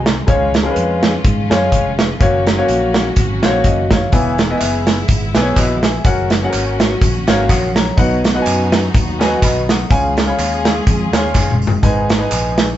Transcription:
Already playing: C2 F#3 G#3 C4 D#4
0.06 snare, closed hi-hat
0.27 C#2 C#3 F3 G#3 C#4 F4 C#5, kick, closed hi-hat
0.54 snare, closed hi-hat
0.63 G#3 C#4 F4 A#4
0.71 B4
0.76 F2, closed hi-hat
1.03 snare, closed hi-hat
1.24 G#2, kick, closed hi-hat
1.50 F#2 G#3 C#4 F4 C#5, snare, closed hi-hat
1.72 F1, kick, closed hi-hat
1.99 snare, closed hi-hat
2.20 F#1 F#3 A#3 C#4 F#4 C#5, kick, closed hi-hat
2.47 snare, closed hi-hat
2.57 A#3 C#4 F#4 C#5
2.68 A#1, closed hi-hat
2.94 snare, closed hi-hat
3.16 G#1, kick, closed hi-hat
3.42 A#1 A#3 C#4 F#4 C5, snare, closed hi-hat
3.50 C#5
3.64 F#1 F#4 D#5, kick, closed hi-hat
3.91 F4 C#5, kick, snare, closed hi-hat
4.12 E1 E3 G#3 B3 E4 G#4 E5, kick, closed hi-hat, tambourine
4.38 snare, closed hi-hat, tambourine
4.50 B3 E4 G#4 D#5
4.58 F#1 E5, clap, closed hi-hat, tambourine
4.87 snare, closed hi-hat, tambourine
5.08 G#1, kick, closed hi-hat, tambourine
5.34 B1 B3 E4 G#4 B4, snare, clap, closed hi-hat, tambourine
5.42 C#5
5.56 A#1 F#4 D#5, kick, clap, closed hi-hat, tambourine
5.83 G#4 E5, snare, closed hi-hat, tambourine
6.04 F#1 F#3 A#3 C#4 F#4 A#4 F#5, kick, closed hi-hat, tambourine
6.30 snare, closed hi-hat, tambourine
6.42 C#4 F#4 G#4 F#5
6.50 A#4, clap, closed hi-hat, tambourine
6.54 G#1
6.80 snare, closed hi-hat, tambourine
7.02 A#1, kick, closed hi-hat, tambourine
7.28 G#1 C#4 F#4 A#4 C#5 F5, snare, clap, closed hi-hat, tambourine
7.49 A#1 F#5 D#6, kick, clap, closed hi-hat, tambourine
7.76 C#5 A#5, snare, closed hi-hat, tambourine
7.97 B1 B2 B3 D#4 F#4 B4 F#5, kick, closed hi-hat, tambourine
8.24 snare, closed hi-hat, tambourine
8.34 D#4 F#4 B4 F#5
8.42 G#5, closed hi-hat
8.47 F#2, clap, tambourine
8.72 snare, closed hi-hat, tambourine
8.95 D#2, kick, closed hi-hat, tambourine
9.19 C#4 F#4 B4 G#5, snare, clap, closed hi-hat, tambourine
9.25 D#4
9.42 B1 D#5 B5, kick, clap, closed hi-hat, tambourine
9.69 F#5 D#6, snare, closed hi-hat, tambourine
9.90 C#2 C#3 G#3 C#4 F4 G#4 C#5 G#5, kick, closed hi-hat, tambourine
10.17 snare, closed hi-hat, tambourine
10.26 F4 G#4 C#5 B5
10.39 D#2, clap, closed hi-hat, tambourine
10.65 snare, closed hi-hat, tambourine
10.87 F2, kick, closed hi-hat, tambourine
11.12 D#2 F4 G#4 C#5 F5, snare, clap, closed hi-hat, tambourine
11.35 F#1, kick, snare, clap, tambourine
11.51 mid tom
11.62 tambourine
11.67 floor tom
11.83 G#1 G#2 B3 D#4 G#4 B4 G#5, kick, closed hi-hat, tambourine
12.10 snare, closed hi-hat, tambourine
12.18 D#4 G#4 B4 G#5
12.31 A#1, clap, closed hi-hat, tambourine
12.58 snare, closed hi-hat, tambourine

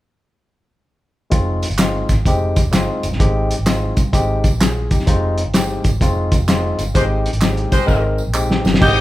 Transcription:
1.30 F1 G#3 C4 D#4 F4, kick, closed hi-hat, tambourine
1.62 closed hi-hat, tambourine
1.70 G1, closed hi-hat
1.78 G#3 C4 D#4 F4, snare, clap, closed hi-hat, tambourine
2.09 G#1, kick, snare, closed hi-hat, tambourine
2.25 F1 G#3 C4 D#4 G4, kick, closed hi-hat, tambourine
2.56 kick, closed hi-hat, tambourine
2.65 F1
2.72 G1 G#3 C4 D#4 F4, snare, clap, closed hi-hat, tambourine
3.03 F#1, closed hi-hat, tambourine
3.12 G1, snare
3.19 G#1 G#3 C4 D#4 G4, kick, closed hi-hat
3.51 closed hi-hat, tambourine
3.59 G#1
3.66 G#3 C4 D#4 F4, snare, clap, closed hi-hat, tambourine
3.97 C2, kick, closed hi-hat, tambourine
4.13 G#1 G#3 C4 D#4 G4, kick, closed hi-hat, tambourine
4.44 kick, closed hi-hat, tambourine
4.52 A#1
4.60 F4 G#4, snare, clap, closed hi-hat, tambourine
4.91 E1 D#4 G4, kick, closed hi-hat, tambourine
4.99 snare
5.06 F1 G#3 C4 D#4 F4, kick, closed hi-hat, tambourine
5.38 closed hi-hat
5.46 G1
5.54 G#3 C4 D#4 G4, snare, clap, closed hi-hat, tambourine
5.84 G#1, kick, closed hi-hat, tambourine
6.01 F1 G#3 C4 D#4 F4, kick, closed hi-hat, tambourine
6.32 kick, closed hi-hat, tambourine
6.40 F1
6.48 G#3 C4 D#4 F4, snare, clap, closed hi-hat, tambourine
6.79 G1, closed hi-hat, tambourine
6.94 G#1 G#3 C4 D#4 G4 C5, kick, closed hi-hat, tambourine
7.26 closed hi-hat
7.33 G#1, closed hi-hat
7.41 G#3 C4 D#4 G4, snare, clap, closed hi-hat, tambourine
7.57 closed hi-hat
7.72 C2 G#3 G4 C5, kick, closed hi-hat, tambourine
7.86 G#1 G#3 C4 D#4 A#4, kick, tambourine
8.18 tambourine
8.27 A#1
8.34 G#3 C4 D#4 G4, clap, tambourine
8.51 snare
8.65 G1, snare, tambourine
8.74 snare
8.80 G#1 G#3 C4 D#4 G4 D#5 D#6, kick, crash, tambourine

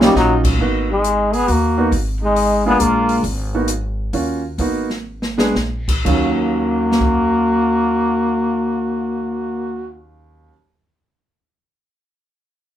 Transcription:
Already playing: B1
0.00 F#3 G3 A#3 C#4 D#4 F4, snare
0.15 A#1 F#3 D#4, snare
0.44 kick, crash
0.59 G#1 A#3 B3 D#4 F#4, kick
0.89 G#3 D#4
1.04 closed hi-hat
1.31 B3 G#4, open hi-hat
1.48 D#2 A#3 F#4, open hi-hat
1.78 A#3 B3 D#4 F#4
1.91 G#1, kick, open hi-hat
2.21 G#3 D#4
2.36 open hi-hat
2.65 G#3 A#3 B3 D4 F4 G#4
2.80 A#1 A#3 F4, closed hi-hat
3.09 open hi-hat
3.23 G#1, kick, open hi-hat
3.54 A#3 B3 D#4 F#4
3.68 closed hi-hat
4.13 D#2 A#3 C#4 F4 F#4, open hi-hat
4.58 G#1 A#3 B3 D#4 F#4, kick, open hi-hat
4.90 snare
5.22 snare
5.38 G#3 B3 D4 G#4, snare
5.54 A#1, snare
5.88 kick, crash
6.05 D#2 D#3 F#3 A#3 C#4 F#4 F5, kick, crash
6.92 snare
7.01 kick

